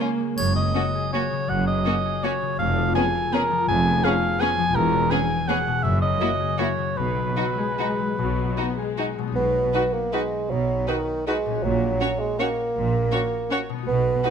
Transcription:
Already playing: C#3 G#3 A#3 A#4 C#5
0.00 C#4 F4 G#4
0.20 G#3
0.37 F#1 F#2 C#5, triangle
0.56 C#3 D#5
0.75 A#3 C#4 F#4
0.95 G#4
1.13 A#3 C#4 F#4 C#5
1.32 C#3
1.49 F#1 F#2 F#5
1.67 A#3 D#5
1.85 A#3 C#4 F#4
2.05 G#4
2.24 A#3 C#4 F#4 C#5
2.42 C#3
2.59 F1 F2 F5
2.77 F3
2.95 B3 C#4 G#4 G#5
3.15 A#4
3.33 B3 C#4 G#4 A#4
3.51 F3
3.68 F1 F2 G#5
3.86 B3
4.04 B3 C#4 G#4 F5
4.23 A#4
4.40 B3 C#4 G#4 G#5
4.59 F3
4.75 E1 E2 A#4
4.93 B2
5.11 B3 C#4 G#4 G#5
5.30 A#4
5.48 B3 C#4 G#4 F#5
5.67 B2
5.83 F#1 F#2 E5
6.02 C#3 D#5
6.21 A#3 E4 F#4
6.40 G#4
6.59 A#3 E4 F#4 C#5
6.78 C#3
6.96 B1 B2 B4
7.16 F#3
7.37 F#3 D#4 F#4
7.58 G#3 G#4
7.79 D#4 F#4
7.99 F#3
8.18 B1 B2 F#3
8.38 B3
8.57 B3 D#4 F#4
8.78 G#3 G#4
8.97 D#4 F#4
9.18 B2 F#3
9.23 B3
9.27 D#4
9.32 B1 B2 B3 F#4
9.74 D#4 F#4 B4
9.93 A#3
10.13 G#3 D#4 F#4 B4
10.49 B1 B2 F#3
10.88 D#3 D#4 F#4 B4
11.27 G#3 D#4 F#4 B4
11.46 A#2
11.50 C#4
11.55 F#4
11.63 A#1 A#2 F#3
12.01 C#4 F#4 C#5
12.19 G#3
12.39 A#3 C#4 F#4 C#5
12.75 A#1 A#2
13.12 C#4 F#4 C#5
13.51 C#4 F#4 C#5
13.69 B2
13.74 B3
13.78 D#4
13.83 F#4
13.87 B1 B2 B3
14.24 D#4 F#4 B4

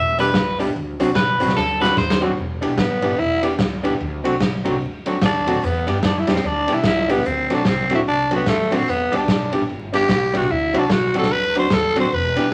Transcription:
Already playing: E1 E5
0.19 G3 B3 D4 E4 G4 B4, closed hi-hat
0.34 C#2, kick, snare
0.59 G3 B3 D4 E4 G4, closed hi-hat
0.76 D2
0.99 C2 F#3 C4 D4 F#4, closed hi-hat
1.15 B1 B4, kick, snare
1.40 C2 F#3 C4 D4 F#4, closed hi-hat
1.48 snare
1.56 D2 D4 F#4 A4, snare
1.80 F#3 C4 D4 F#4 B4, snare
1.97 D#2 C5, kick, snare
2.10 snare
2.21 F#3 C4 D4 F#4
2.38 E1
2.61 B1 E3 B3 D4 E4 G4, ride
2.78 A1 B3, kick, snare
3.02 G1 E3 B3 D4 E4 G4, ride
3.19 E1 E4 G4
3.42 E3 B3 D4 E4 G4, ride
3.59 C#2, kick, snare
3.83 E3 B3 D4 E4 G4, ride
4.00 D2
4.24 C2 F#3 A3 C4 D4 F#4, ride
4.40 B1, kick, snare
4.64 C2 F#3 A3 C4 D4 F#4, ride
4.81 D2 D4 F#4
5.06 F#3 A3 C4 D4 F#4, ride
5.22 D#2 D4, kick, snare
5.47 F#3 A3 C4 D4 F#4, open hi-hat, ride
5.62 E2 B3, hi-hat pedal
5.87 G2 G3 B3 D4 E4 G4, ride
6.03 F#2 D4, kick, snare
6.19 E4
6.27 E2 G3 B3 D4 E4 G4, snare, ride
6.33 C4, snare
6.44 D2 D4 E4 G4
6.67 B1 G3 B3 D4 E4 G4, ride
6.73 E4
6.84 C#2 E4, kick, snare
7.08 G3 B3 D4 E4 G4, open hi-hat, ride
7.25 D2 C4, hi-hat pedal
7.49 B1 F#3 A3 C4 D4 F#4, ride
7.54 D4
7.65 C2 C4, kick, snare
7.90 D2 F#3 A3 C4 D4 F#4, ride
7.95 E4
8.06 C2 D4 F#4
8.31 F#3 A3 C4 D4 F#4, ride
8.35 B3
8.46 D#2 A3, kick, snare
8.71 F#3 A3 C4 D4 F#4, open hi-hat, ride
8.76 C4
8.88 E2 B3, hi-hat pedal
9.12 D2 G3 B3 D4 E4 G4, ride
9.16 D4
9.28 B1, kick, snare
9.52 A1 G3 B3 D4 E4 G4, ride
9.68 G1 E4 G4
9.92 G3 B3 D4 E4 G4, ride
10.09 B1, kick, snare
10.33 C2 G3 B3 D4 E4 G4, ride
10.37 F#4
10.51 D2 E4
10.73 C2 F#3 C4 D4 F#4, ride
10.78 D4
10.90 B1 F#4, kick, snare
11.14 C2 F#3 C4 D4 F#4, ride
11.18 A4
11.23 snare
11.31 D2 D4 F#4 B4
11.55 F#3 C4 D4 F#4 C5, ride
11.70 D#2 A4, kick, snare
11.95 F#3 C4 D4 F#4, ride
12.00 C5
12.13 E1 B4
12.36 B1 E3 B3 D4 E4 G4, ride

